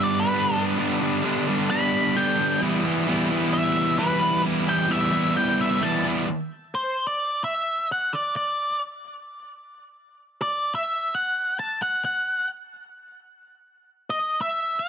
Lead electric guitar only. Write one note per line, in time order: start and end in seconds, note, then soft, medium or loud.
0.03 0.19 D5 medium
0.20 0.61 B4 medium
1.71 2.18 B5 loud
2.17 2.59 G5 medium
3.53 4.00 E5 loud
3.99 4.41 B4 medium
4.69 4.92 G5 medium
4.91 5.33 E5 medium
5.37 5.60 G5 medium
5.61 5.83 E5 loud
5.83 6.03 A5 loud
6.75 7.06 C5 medium
7.07 7.44 D5 medium
7.44 7.86 E5 medium
7.92 8.14 F#5 medium
8.13 8.35 D5 medium
8.36 8.78 D5 medium
10.42 10.74 D5 medium
10.75 11.13 E5 medium
11.15 11.56 F#5 medium
11.59 11.82 A5 medium
11.82 12.03 F#5 medium
12.05 12.47 F#5 medium
14.10 14.41 D#5 medium
14.41 14.81 E5 medium
14.79 14.89 F#5 medium